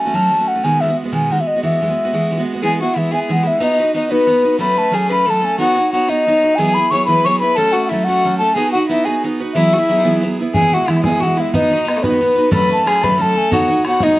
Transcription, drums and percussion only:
10.54 bodhran medium
10.88 bodhran medium
11.04 bodhran medium
11.22 bodhran soft
11.54 bodhran medium
11.88 bodhran medium
12.04 bodhran medium
12.21 bodhran soft
12.52 bodhran medium
12.87 bodhran medium
13.04 bodhran medium
13.22 bodhran soft
13.52 bodhran medium
13.85 bodhran medium
14.00 bodhran medium

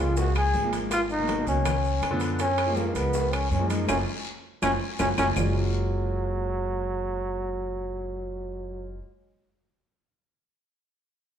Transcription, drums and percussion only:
0.16 high bongo medium
0.16 high conga soft
0.16 long guiro medium
0.16 maracas medium
0.35 high conga soft
0.35 high timbale medium
0.35 claves medium
0.35 maracas soft
0.54 high bongo soft
0.54 low bongo medium
0.54 high conga medium
0.54 short guiro medium
0.54 maracas soft
0.73 high bongo soft
0.73 high conga medium
0.73 high timbale medium
0.73 short guiro medium
0.73 maracas medium
0.91 high bongo medium
0.91 high conga soft
0.91 high timbale loud
0.91 long guiro medium
0.91 claves medium
0.91 maracas medium
1.09 high bongo soft
1.09 high conga soft
1.09 maracas soft
1.28 high bongo medium
1.28 high conga medium
1.28 high timbale medium
1.28 short guiro medium
1.28 maracas soft
1.47 high bongo soft
1.47 high conga soft
1.47 short guiro medium
1.47 maracas medium
1.65 high bongo medium
1.65 high conga soft
1.65 low conga medium
1.65 high timbale medium
1.65 long guiro medium
1.65 claves medium
1.65 maracas medium
1.84 high conga soft
1.84 maracas soft
2.02 high bongo soft
2.02 low bongo medium
2.02 high conga soft
2.02 high timbale medium
2.02 short guiro medium
2.02 claves medium
2.02 maracas soft
2.20 high bongo soft
2.20 high timbale medium
2.20 short guiro medium
2.20 maracas medium
2.39 high bongo medium
2.39 high conga soft
2.39 high timbale medium
2.39 long guiro medium
2.39 maracas medium
2.58 high bongo soft
2.58 high conga soft
2.58 high timbale medium
2.58 claves medium
2.58 maracas soft
2.76 high bongo medium
2.76 high conga medium
2.76 short guiro medium
2.76 maracas soft
2.95 high bongo soft
2.95 high conga soft
2.95 high timbale medium
2.95 short guiro medium
2.95 maracas medium
3.13 high bongo medium
3.13 high conga soft
3.13 long guiro medium
3.13 maracas medium
3.33 high conga soft
3.33 high timbale medium
3.33 claves medium
3.33 maracas soft
3.51 high bongo soft
3.51 low bongo medium
3.51 high conga medium
3.51 short guiro medium
3.51 maracas soft
3.70 high bongo soft
3.70 high conga medium
3.70 high timbale medium
3.70 short guiro medium
3.70 maracas medium
3.88 high bongo medium
3.88 high conga medium
3.88 high timbale loud
3.88 long guiro loud
3.88 claves medium
3.88 maracas loud
4.62 high bongo loud
4.62 high conga medium
4.62 high timbale loud
4.62 long guiro loud
4.62 claves loud
4.62 maracas loud
4.99 high bongo loud
4.99 high conga loud
4.99 high timbale medium
4.99 long guiro loud
4.99 claves medium
4.99 maracas medium
5.18 high bongo medium
5.18 high conga medium
5.18 high timbale medium
5.18 long guiro loud
5.18 claves medium
5.18 maracas medium
5.36 low bongo medium
5.36 low conga medium
5.36 low timbale loud
5.36 long guiro medium
5.36 claves medium
5.36 maracas loud

